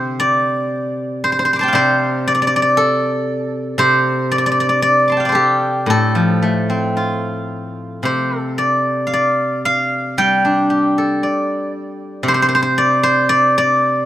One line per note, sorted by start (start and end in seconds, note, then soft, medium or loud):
0.00 1.72 C3 soft
0.00 0.43 D3 soft
0.00 0.18 F4 soft
0.00 0.45 A4 soft
0.00 1.24 C5 medium
0.20 1.72 D5 medium
1.24 1.32 C5 medium
1.32 1.39 C5 medium
1.39 1.45 C5 medium
1.45 1.53 C5 medium
1.53 1.59 C5 medium
1.53 2.78 D6 soft
1.59 1.75 C5 medium
1.59 3.06 A5 soft
1.59 2.93 C6 soft
1.63 3.19 G5 medium
1.68 3.35 F5 soft
1.73 3.77 C3 medium
1.73 3.73 C5 medium
1.73 2.27 D5 medium
2.27 2.34 D5 medium
2.35 2.41 D5 medium
2.42 2.47 D5 medium
2.47 2.56 D5 medium
2.56 2.62 D5 medium
2.62 4.31 D5 medium
2.77 4.97 A4 medium
3.78 5.87 C3 medium
3.78 5.28 C5 medium
4.31 4.38 D5 medium
4.38 4.46 D5 medium
4.46 4.51 D5 medium
4.52 4.60 D5 medium
4.60 4.69 D5 medium
4.69 4.82 D5 medium
4.82 5.25 D5 medium
5.08 6.40 C6 soft
5.08 6.30 D6 soft
5.12 6.57 A5 soft
5.17 6.87 F5 soft
5.17 6.72 G5 soft
5.25 7.27 C5 soft
5.25 7.10 D5 soft
5.32 7.70 G4 medium
5.32 5.90 A4 soft
5.86 8.05 A2 soft
5.86 8.09 A4 medium
6.15 8.33 F3 soft
6.42 8.60 A3 soft
6.70 8.86 C4 soft
6.97 9.13 F4 soft
8.03 11.21 C3 soft
8.03 8.39 C5 medium
8.39 10.03 A4 medium
8.58 9.13 D5 medium
9.07 9.65 F5 soft
9.13 10.98 D5 medium
9.65 11.32 F5 medium
10.18 13.29 G3 soft
10.18 11.74 G5 medium
10.45 12.51 D4 soft
10.70 12.77 G4 soft
10.98 13.04 A4 soft
11.23 12.77 D5 soft
12.23 14.05 C3 medium
12.28 12.34 C5 medium
12.34 12.42 C5 medium
12.42 12.48 C5 medium
12.49 12.54 C5 medium
12.55 12.62 C5 medium
12.62 13.03 C5 medium
12.78 13.29 D5 medium
13.03 14.05 C5 medium
13.29 13.57 D5 medium
13.58 14.05 D5 medium